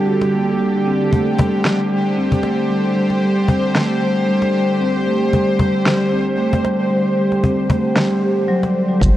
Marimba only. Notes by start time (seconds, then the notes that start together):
0.06 F#4
0.20 G3
0.33 A#3
0.47 A#3
0.59 G3
0.86 C4
1.11 A3
1.38 G3
1.65 G3
1.90 G3
2.17 C4
2.43 A3
2.69 G3
2.96 G3
3.22 G3
3.49 C4
3.75 A3
4.01 G3
4.27 G3
4.54 G3
4.80 C4
5.07 A3
5.33 G3
5.59 G3
5.85 G3
6.12 C4
6.38 A3
6.64 G3
6.91 G3
7.17 G3
7.44 C4
7.70 A3
7.96 G3
8.22 G4
8.48 F#3
8.62 G3
8.74 F#3
8.88 F#3
9.00 G3